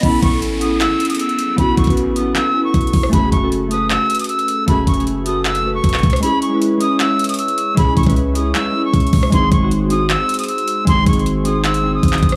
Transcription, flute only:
\new Staff \with { instrumentName = "Flute" } { \time 4/4 \key a \lydian \tempo 4 = 155 b''8 cis'''8 r8 dis'''8 e'''8. dis'''16 e'''4 | b''8 cis'''8 r8 dis'''8 e'''8. cis'''4~ cis'''16 | b''8 cis'''8 r8 dis'''8 e'''8. dis'''16 e'''4 | b''8 cis'''8 r8 dis'''8 e'''8. cis'''4~ cis'''16 |
b''8 cis'''8 r8 dis'''8 e'''8. dis'''16 e'''4 | b''8 cis'''8 r8 dis'''8 e'''8. cis'''4~ cis'''16 | bis''8 cis'''8 r8 dis'''8 e'''8. dis'''16 e'''4 | bis''8 cis'''8 r8 dis'''8 e'''8. dis'''4~ dis'''16 | }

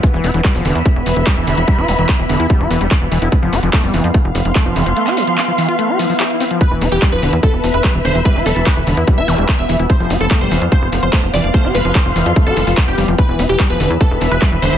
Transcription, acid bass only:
\new Staff \with { instrumentName = "Acid bass" } { \clef bass \time 4/4 \key e \phrygian \tempo 4 = 146 e16 e16 f'16 e16 g16 f16 d16 e16 g16 r8. g16 e16 d16 e16 | g16 f'16 e16 e16 r16 e16 d16 e'16 g16 f'16 e16 g16 r8 e16 e'16 | f16 f16 g'16 f16 a16 g16 e16 f16 a16 r8. a16 f16 e16 f16 | a16 g'16 f16 f16 r16 f16 e16 f'16 a16 g'16 f16 f16 g'16 r16 c'16 f16 |
r16 e16 f'16 e16 g16 f16 d16 e16 g16 r8. g16 e16 d16 e16 | g16 f'16 e16 e16 r16 e16 d16 e'16 g16 f'16 e16 g16 r8 e16 e'16 | f16 f16 g'16 f16 a16 g16 e16 f16 a16 r8. a16 f16 e16 f16 | a16 g'16 f16 f16 r16 f16 e16 f'16 a16 g'16 e16 f'16 r8 g16 f16 |
e16 e16 f'16 e16 g16 f16 d16 e16 g16 r8. g16 e16 d16 e16 | }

